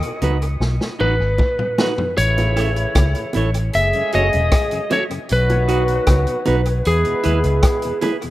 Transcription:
0.00 0.13 B2 medium
0.00 1.34 D#5 loud
0.00 closed hi-hat medium
0.22 0.56 C#2 medium
0.22 0.32 F#3 medium
0.22 0.32 B3 medium
0.22 0.36 D#4 medium
0.22 0.32 D#4 medium
0.22 0.37 F#4 medium
0.22 0.37 B4 medium
0.22 closed hi-hat medium
0.22 low bongo medium
0.42 closed hi-hat medium
0.60 0.78 B1 loud
0.60 snare medium
0.81 0.90 B2 medium
0.81 snare medium
0.99 1.18 A1 medium
0.99 1.10 F#3 medium
0.99 1.10 B3 medium
0.99 1.14 D#4 medium
0.99 1.10 D#4 medium
0.99 1.14 F#4 medium
0.99 2.14 B4 medium
0.99 1.15 B4 medium
0.99 high bongo soft
1.20 1.37 G#1 medium
1.38 kick loud
1.38 high bongo medium
1.59 1.69 B2 medium
1.59 mid tom medium
1.78 1.89 F#3 medium
1.78 1.89 B3 medium
1.78 1.92 D#4 medium
1.78 1.89 D#4 medium
1.78 1.93 F#4 medium
1.78 1.93 B4 medium
1.78 snare medium
1.78 high bongo medium
1.78 low bongo medium
1.98 2.08 B2 soft
1.98 floor tom medium
2.17 2.85 A1 loud
2.17 3.32 C#3 medium
2.17 3.32 E3 medium
2.17 3.32 A3 medium
2.17 3.32 E4 medium
2.17 3.78 C#5 loud
2.17 closed hi-hat loud
2.38 2.47 A2 medium
2.38 closed hi-hat medium
2.38 high bongo medium
2.56 2.67 E3 medium
2.56 2.67 A3 medium
2.56 2.67 C#4 medium
2.56 2.70 E4 medium
2.56 2.71 A4 medium
2.56 2.71 C#5 medium
2.56 cross-stick medium
2.56 closed hi-hat medium
2.76 2.87 A2 medium
2.76 closed hi-hat medium
2.95 3.13 C#2 loud
2.95 kick loud
2.95 cross-stick loud
2.95 closed hi-hat medium
2.95 high bongo medium
3.15 3.26 A2 medium
3.15 closed hi-hat medium
3.33 3.69 A1 medium
3.33 3.45 E3 medium
3.33 3.45 A3 medium
3.33 3.49 E4 medium
3.33 3.49 A4 medium
3.33 3.50 C#5 medium
3.33 closed hi-hat medium
3.33 low bongo medium
3.37 3.46 C#4 medium
3.54 muted clean electric guitar stroke medium
3.54 closed hi-hat medium
3.73 3.91 F#1 loud
3.73 4.88 C#3 medium
3.73 4.88 G#3 medium
3.73 4.88 A3 medium
3.73 4.88 G#4 medium
3.73 4.11 E5 loud
3.73 closed hi-hat medium
3.93 4.03 F#2 medium
3.93 4.03 C#3 medium
3.93 closed hi-hat soft
4.12 4.31 F#1 medium
4.12 4.23 F#3 medium
4.12 4.23 A3 medium
4.12 4.23 C#4 medium
4.12 4.27 F#4 medium
4.12 4.27 A4 medium
4.12 4.28 C#5 medium
4.12 4.94 D#5 loud
4.12 closed hi-hat medium
4.33 4.50 E1 medium
4.33 4.42 F#2 medium
4.33 4.42 C#3 medium
4.33 closed hi-hat soft
4.51 kick loud
4.51 cross-stick loud
4.51 closed hi-hat loud
4.71 4.81 F#2 medium
4.71 4.81 C#3 medium
4.71 closed hi-hat medium
4.90 5.00 F#3 medium
4.90 5.00 A3 medium
4.90 5.00 C#4 medium
4.90 5.04 F#4 medium
4.90 5.05 A4 medium
4.90 5.05 C#5 medium
4.90 5.03 C#5 medium
4.90 closed hi-hat medium
4.90 high bongo medium
4.90 low bongo medium
5.10 5.19 F#2 medium
5.10 5.19 C#3 medium
5.10 closed hi-hat medium
5.29 5.98 B1 loud
5.29 6.44 D#3 medium
5.29 6.44 F#3 medium
5.29 6.44 B3 medium
5.29 6.44 F#4 medium
5.29 6.91 B4 medium
5.29 closed hi-hat medium
5.49 5.58 B2 medium
5.49 closed hi-hat soft
5.49 high bongo medium
5.68 5.78 F#3 medium
5.68 5.78 B3 medium
5.68 5.82 D#4 medium
5.68 5.78 D#4 medium
5.68 5.83 F#4 loud
5.68 5.83 B4 loud
5.68 closed hi-hat medium
5.88 5.97 B2 medium
5.88 closed hi-hat soft
6.07 6.25 C#2 loud
6.07 kick loud
6.07 cross-stick loud
6.07 closed hi-hat medium
6.07 high bongo medium
6.27 6.37 B2 medium
6.27 closed hi-hat medium
6.45 6.81 B1 medium
6.45 6.55 F#3 medium
6.45 6.56 B3 medium
6.45 6.60 D#4 medium
6.45 6.56 D#4 medium
6.45 6.60 F#4 medium
6.45 6.61 B4 medium
6.45 closed hi-hat medium
6.45 low bongo medium
6.65 muted clean electric guitar stroke soft
6.65 closed hi-hat medium
6.84 7.03 E2 loud
6.84 7.99 G#3 medium
6.84 7.99 B3 medium
6.84 7.99 E4 medium
6.84 7.99 G#4 medium
6.84 7.99 B4 medium
6.84 closed hi-hat medium
7.05 7.15 E2 medium
7.05 7.15 B2 medium
7.05 closed hi-hat soft
7.23 7.42 D#2 medium
7.23 7.34 G#3 medium
7.23 7.34 B3 medium
7.23 7.38 E4 loud
7.23 7.34 E4 medium
7.23 7.38 G#4 loud
7.23 7.39 B4 loud
7.23 closed hi-hat medium
7.44 7.61 C#2 loud
7.44 closed hi-hat soft
7.63 kick loud
7.63 cross-stick loud
7.63 closed hi-hat loud
7.82 7.93 E2 medium
7.82 7.93 B2 medium
7.82 closed hi-hat medium
8.01 8.12 G#3 medium
8.01 8.12 B3 medium
8.01 8.16 E4 medium
8.01 8.12 E4 medium
8.01 8.16 G#4 loud
8.01 8.16 B4 medium
8.01 closed hi-hat medium
8.01 high bongo medium
8.01 low bongo medium
8.22 8.30 E2 medium
8.22 8.30 B2 medium
8.22 closed hi-hat medium

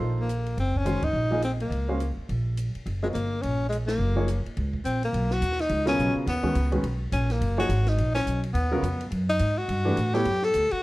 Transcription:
0.00 0.54 A#1 medium
0.00 0.26 F3 medium
0.00 0.26 A#3 medium
0.00 0.27 D#4 medium
0.00 0.27 A4 medium
0.00 0.27 C5 medium
0.20 0.56 A#3 medium
0.29 hi-hat pedal medium
0.29 ride soft
0.46 ride soft
0.57 1.00 F#1 medium
0.57 0.79 C4 medium
0.57 ride soft
0.74 1.05 C#4 medium
0.74 kick soft
0.85 1.01 D#3 medium
0.85 1.01 G#3 medium
0.85 1.01 C#4 medium
0.85 1.01 F#4 medium
0.85 1.01 C5 medium
0.85 hi-hat pedal soft
0.85 ride medium
1.02 1.13 G1 medium
1.02 1.43 D#4 loud
1.02 kick medium
1.02 ride medium
1.13 1.68 A#1 medium
1.31 1.41 F3 medium
1.31 1.41 A#3 medium
1.31 1.42 D#4 medium
1.31 1.42 G#4 medium
1.31 1.42 D#5 medium
1.42 1.51 C4 medium
1.42 hi-hat pedal soft
1.42 ride medium
1.60 2.14 A#3 medium
1.60 ride soft
1.70 2.13 C#2 medium
1.70 ride soft
1.88 1.99 G#3 medium
1.88 1.99 C#4 medium
1.88 1.99 F#4 medium
1.88 1.99 C5 medium
1.88 1.99 F5 medium
2.00 hi-hat pedal soft
2.00 ride medium
2.17 muted upright bass stroke soft
2.29 2.71 A#1 medium
2.29 ride medium
2.57 hi-hat pedal medium
2.57 ride medium
2.75 muted upright bass stroke soft
2.75 ride soft
2.86 3.12 F#1 medium
2.86 ride soft
3.03 3.13 F#3 medium
3.03 3.08 G#3 medium
3.03 3.13 C4 medium
3.03 3.13 F4 medium
3.03 3.13 A#4 medium
3.03 3.13 D#5 medium
3.14 3.41 G1 medium
3.14 3.43 A#3 medium
3.14 hi-hat pedal soft
3.14 ride medium
3.42 3.97 A#1 medium
3.42 3.68 C#4 loud
3.42 ride medium
3.69 3.77 G#3 medium
3.69 hi-hat pedal medium
3.69 ride medium
3.87 4.40 A#3 medium
3.87 snare medium
3.87 ride medium
3.99 4.42 F#1 medium
4.16 4.26 F3 medium
4.16 4.27 A#3 medium
4.16 4.27 D#4 medium
4.16 4.27 G#4 medium
4.16 4.27 C#5 medium
4.28 hi-hat pedal medium
4.28 ride medium
4.46 muted upright bass stroke soft
4.46 ride soft
4.57 4.83 C#2 medium
4.57 ride medium
4.73 kick medium
4.85 5.11 A#1 medium
4.85 5.02 C4 medium
4.85 hi-hat pedal soft
4.85 ride medium
5.03 5.34 A#3 medium
5.03 ride soft
5.13 5.41 B1 medium
5.13 ride medium
5.31 5.62 F#4 loud
5.31 snare soft
5.41 5.69 D#2 medium
5.41 hi-hat pedal medium
5.41 ride medium
5.52 snare soft
5.59 5.87 D#4 medium
5.59 snare soft
5.59 ride soft
5.69 5.97 C#2 medium
5.69 ride medium
5.86 6.24 C#3 medium
5.86 6.24 F#3 medium
5.86 6.24 B3 medium
5.86 6.14 C#4 medium
5.86 6.24 F4 medium
5.86 6.24 A#4 medium
5.86 snare medium
5.86 ride medium
5.98 6.14 B1 medium
5.98 hi-hat pedal medium
6.15 muted upright bass stroke soft
6.26 6.54 D#2 medium
6.26 6.81 B3 medium
6.26 snare soft
6.26 ride medium
6.43 6.54 D#3 medium
6.43 6.54 G#3 medium
6.43 6.54 C#4 medium
6.43 6.54 F#4 medium
6.43 6.54 B4 medium
6.43 kick medium
6.55 6.82 C#2 loud
6.55 hi-hat pedal soft
6.55 ride medium
6.72 6.82 D#3 medium
6.72 6.82 G#3 medium
6.72 6.82 C#4 medium
6.72 6.83 F#4 medium
6.72 6.83 B4 medium
6.72 ride soft
6.83 7.11 B1 medium
6.83 ride medium
7.12 7.40 A#1 medium
7.12 7.33 C#4 medium
7.12 hi-hat pedal medium
7.12 ride medium
7.30 7.59 A#3 medium
7.30 snare soft
7.30 ride soft
7.41 7.68 F#1 medium
7.41 ride medium
7.58 7.68 F3 medium
7.58 7.68 A#3 medium
7.58 7.68 D#4 medium
7.58 7.90 F#4 medium
7.58 7.68 G#4 medium
7.58 7.68 C#5 medium
7.69 7.97 G#1 loud
7.69 hi-hat pedal medium
7.69 ride medium
7.86 8.14 D#4 medium
7.86 snare soft
7.86 ride soft
7.98 8.25 A#1 medium
7.98 ride medium
8.14 8.41 C#4 medium
8.14 snare medium
8.14 ride medium
8.26 8.53 B1 medium
8.26 hi-hat pedal medium
8.43 ride soft
8.54 8.82 D#2 medium
8.54 9.07 B3 medium
8.54 ride medium
8.71 8.82 C#3 medium
8.71 8.82 F#3 medium
8.71 8.82 B3 medium
8.71 8.82 F4 medium
8.71 8.82 A#4 medium
8.82 9.10 F2 medium
8.82 hi-hat pedal medium
8.82 ride medium
9.01 ride soft
9.11 9.39 F#2 medium
9.11 ride medium
9.29 9.59 D#4 loud
9.39 9.67 G#2 medium
9.39 hi-hat pedal medium
9.39 ride medium
9.58 10.16 F#4 loud
9.68 9.96 G2 medium
9.68 ride medium
9.85 9.95 E3 medium
9.85 9.95 A3 medium
9.85 9.96 D4 medium
9.85 9.96 G4 medium
9.85 9.96 B4 medium
9.96 10.24 A2 medium
9.96 hi-hat pedal medium
9.96 ride medium
10.14 10.24 F#3 medium
10.14 10.24 B3 medium
10.14 10.24 E4 medium
10.14 10.45 G4 loud
10.14 10.24 A4 medium
10.14 10.24 C#5 medium
10.14 snare soft
10.14 ride soft
10.25 10.53 F#2 medium
10.25 ride medium
10.42 10.73 A4 loud
10.42 snare soft
10.54 10.70 D2 medium
10.54 hi-hat pedal medium
10.54 ride medium
10.71 10.83 F#4 loud
10.71 muted upright bass stroke soft
10.71 ride soft

